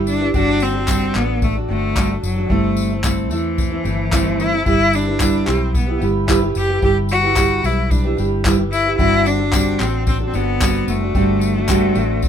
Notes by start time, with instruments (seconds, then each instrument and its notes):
Already playing: fingered electric bass G1, steel-string acoustic guitar G3 E4 G4 B4
0.07 cello D4, tambourine
0.20 steel-string acoustic guitar E4 G4 B4
0.34 fingered electric bass G1, steel-string acoustic guitar G3 C4 D4 F#4 A4, cello D4, kick, tambourine
0.60 cello C4, tambourine
0.74 steel-string acoustic guitar D4 F#4 A4
0.88 steel-string acoustic guitar G3 C4 D4 F#4 A4, kick, clap, tambourine
1.14 fingered electric bass A1, cello B3, steel-string acoustic guitar C4 D4 F#4 A4, clap, tambourine
1.42 cello A3, kick, tambourine
1.55 steel-string acoustic guitar D4 F#4 A4
1.68 fingered electric bass G1, cello A3, steel-string acoustic guitar C4 D4 F#4 A4
1.96 steel-string acoustic guitar G3 C4 D4 F#4 A4, kick, clap, tambourine
2.09 steel-string acoustic guitar D4 F#4 A4
2.23 fingered electric bass F#1, cello F#3, tambourine
2.36 steel-string acoustic guitar D4 F#4 A4
2.49 fingered electric bass G1, steel-string acoustic guitar G3 A3 C4 E4 A4, cello A3, kick
2.77 tambourine
2.90 steel-string acoustic guitar C4 E4 A4
3.03 steel-string acoustic guitar G3 A3 C4 E4 A4, kick, clap, tambourine
3.30 fingered electric bass E2, cello E3, steel-string acoustic guitar A3 C4 E4 A4, tambourine
3.58 kick, tambourine
3.70 steel-string acoustic guitar C4 E4 A4
3.84 fingered electric bass G1, steel-string acoustic guitar A3 C4 E4 A4, tambourine
4.11 steel-string acoustic guitar G3 A3 C4 E4 A4, kick, clap, tambourine
4.40 cello E4, tambourine
4.52 steel-string acoustic guitar C4 E4 A4
4.65 fingered electric bass G1, steel-string acoustic guitar G3 E4 G4 B4, cello E4, kick, tambourine
4.93 cello D4, tambourine
5.06 steel-string acoustic guitar E4 G4 B4
5.19 steel-string acoustic guitar G3 E4 G4 B4, kick, clap, tambourine
5.46 fingered electric bass B1, steel-string acoustic guitar G3 E4 G4 B4, cello C4, clap, tambourine
5.75 cello B3, kick, tambourine
5.87 steel-string acoustic guitar E4 G4 B4
6.00 fingered electric bass G1, steel-string acoustic guitar G3 E4 G4 B4, tambourine
6.27 steel-string acoustic guitar G3 E4 G4 B4, kick, clap, tambourine
6.41 steel-string acoustic guitar E4 G4 B4
6.55 fingered electric bass F#1, cello G4, tambourine
6.68 steel-string acoustic guitar E4 G4 B4
6.81 fingered electric bass G1, steel-string acoustic guitar G3 E4 G4 B4, cello G4, kick, tambourine
7.09 cello F#4, tambourine
7.22 steel-string acoustic guitar E4 G4 B4
7.35 steel-string acoustic guitar G3 E4 G4 B4, kick, clap, tambourine
7.63 fingered electric bass B1, steel-string acoustic guitar G3 E4 G4 B4, cello E4, tambourine
7.91 cello D4, kick, tambourine
8.03 steel-string acoustic guitar E4 G4 B4
8.17 fingered electric bass G1, steel-string acoustic guitar G3 E4 G4 B4, tambourine
8.44 steel-string acoustic guitar G3 E4 G4 B4, kick, clap, tambourine
8.57 steel-string acoustic guitar E4 G4 B4
8.72 cello E4, tambourine
8.84 steel-string acoustic guitar E4 G4 B4
8.98 fingered electric bass G1, steel-string acoustic guitar G3 C4 D4 F#4 A4, cello E4, kick, tambourine
9.26 cello D4, tambourine
9.38 steel-string acoustic guitar D4 F#4 A4
9.52 steel-string acoustic guitar G3 C4 D4 F#4 A4, kick, clap, tambourine
9.79 fingered electric bass A1, steel-string acoustic guitar C4 D4 F#4 A4, cello C4, clap, tambourine
10.07 cello C4, kick, tambourine
10.19 steel-string acoustic guitar D4 F#4 A4
10.28 cello C4
10.33 fingered electric bass G1, cello B3, steel-string acoustic guitar C4 D4 F#4 A4, tambourine
10.60 steel-string acoustic guitar G3 C4 D4 F#4 A4, kick, clap, tambourine
10.88 fingered electric bass F#1, cello A3, tambourine
11.01 steel-string acoustic guitar D4 F#4 A4
11.15 fingered electric bass G1, steel-string acoustic guitar G3 C4 D4 F#4 A4, kick, tambourine
11.41 tambourine
11.55 steel-string acoustic guitar D4 F#4 A4
11.68 steel-string acoustic guitar G3 C4 D4 F#4 A4, kick, clap, tambourine
11.95 fingered electric bass A1, steel-string acoustic guitar C4 D4 F#4 A4, tambourine
12.22 kick, tambourine